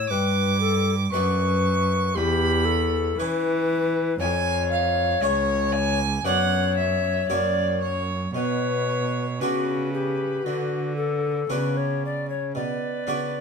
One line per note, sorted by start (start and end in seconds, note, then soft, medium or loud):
0.00 0.11 A2 medium
0.00 0.12 C#5 medium
0.09 1.09 G2 medium
0.09 1.11 G2 medium
0.09 0.60 B4 medium
0.09 1.10 D6 loud
0.60 0.94 A4 medium
1.12 2.18 F#2 medium
1.12 2.13 F#2 medium
1.12 1.88 D4 medium
1.12 2.17 B4 medium
1.12 1.88 B4 medium
1.12 2.18 C#6 loud
2.15 3.18 E2 medium
2.15 3.16 E2 medium
2.15 2.67 G4 medium
2.15 3.19 B5 loud
2.65 3.20 A4 medium
3.19 4.19 E3 medium
3.19 4.18 E3 medium
3.19 3.93 C#4 soft
3.19 4.19 B4 loud
3.19 3.93 C#5 medium
4.19 5.21 F2 medium
4.19 5.20 F2 medium
4.19 5.99 C#5 loud
4.19 4.68 G#5 loud
4.71 5.24 F5 medium
5.22 6.23 C#2 medium
5.22 6.22 C#2 medium
5.22 5.97 C#4 soft
5.22 5.74 C#5 loud
5.22 5.97 C#5 medium
5.73 6.25 G#5 loud
6.25 7.25 F#2 medium
6.25 7.27 F#2 medium
6.25 7.25 B3 soft
6.25 7.26 D4 soft
6.25 7.26 F#4 medium
6.25 8.02 C#5 loud
6.25 6.76 F#5 loud
6.77 7.28 E5 medium
7.29 8.30 F#2 medium
7.29 8.32 F#2 medium
7.29 8.30 A#3 soft
7.29 8.30 E4 soft
7.29 8.30 F#4 soft
7.29 7.80 D5 medium
7.81 8.33 C#5 medium
8.34 9.36 B2 medium
8.34 9.42 B2 medium
8.34 9.26 B4 medium
8.34 9.42 C#5 medium
9.40 10.45 C#3 medium
9.40 10.42 C#3 medium
9.40 10.17 B3 soft
9.40 10.17 D4 medium
9.40 9.90 F#4 medium
9.40 10.18 F#4 soft
9.40 11.51 B4 medium
9.94 10.46 G4 medium
10.45 11.48 D3 medium
10.45 11.47 D3 medium
10.45 10.96 F#4 medium
10.97 11.52 A4 medium
11.50 12.51 C#3 medium
11.50 12.53 C#3 medium
11.50 12.26 B3 soft
11.50 12.26 D4 soft
11.50 12.26 F#4 soft
11.50 11.79 B4 medium
11.77 12.03 C#5 medium
12.05 12.29 D5 medium
12.30 12.55 C#5 medium
12.55 13.03 B2 soft
12.55 13.04 B2 medium
12.55 13.41 B4 medium
12.55 13.41 D5 medium
13.07 13.41 C#3 soft
13.07 13.41 C#3 medium
13.07 13.41 B3 soft
13.07 13.41 D4 soft
13.07 13.41 F#4 soft